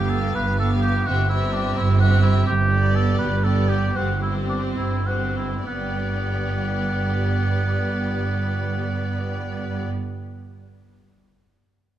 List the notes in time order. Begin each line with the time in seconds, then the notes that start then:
Already playing: G1 G2 B3 G4 F5
0.09 A4
0.34 G1 G2 B4
0.59 B3 G4 A4 F5
0.81 G4
1.06 G1 G2 C4 F#4 G4 E5
1.29 C4 E4 G4 E5
1.53 D4
1.77 G1 G2 E4
2.00 C4 F#4 G4 E5
2.22 E4
2.46 G1 G2 G4
2.72 B3 G4 D5
2.96 A4
3.19 G1 G2 B4
3.44 B3 G4 A4 D5
3.68 G4
3.96 G1 G2 C4 F#4 G4 C5
4.22 C4 E4 G4 C5
4.49 D4
4.77 G1 G2 E4
5.06 C4 F#4 G4 C5
5.37 E4
5.66 G1 G2 B3 G4 D5